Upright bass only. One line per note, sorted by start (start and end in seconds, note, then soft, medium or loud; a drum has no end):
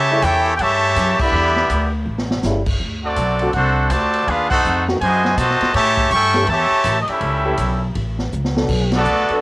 0.00 0.21 C#3 loud
0.22 0.58 E2 loud
0.59 0.95 G2 medium
0.96 1.18 F#2 loud
1.20 muted upright bass stroke soft
1.32 1.68 E2 loud
1.70 2.05 D2 medium
2.05 2.42 A1 medium
2.44 2.79 G1 medium
2.80 3.16 D2 medium
3.16 3.53 B1 medium
3.54 3.90 C2 medium
3.90 4.26 D2 medium
4.27 4.63 D#2 medium
4.65 5.00 F2 medium
5.01 5.36 F#2 medium
5.37 5.59 B2 medium
5.61 muted upright bass stroke soft
5.74 6.10 A2 medium
6.11 6.47 G2 medium
6.47 6.70 E2 loud
6.71 muted upright bass stroke soft
6.84 7.07 A1 medium
7.08 muted upright bass stroke soft
7.21 7.57 C#2 medium
7.58 7.94 B1 medium
7.95 8.31 A1 medium
8.33 8.68 C#2 loud
8.68 9.05 B1 loud
9.06 9.28 D2 medium
9.29 muted upright bass stroke soft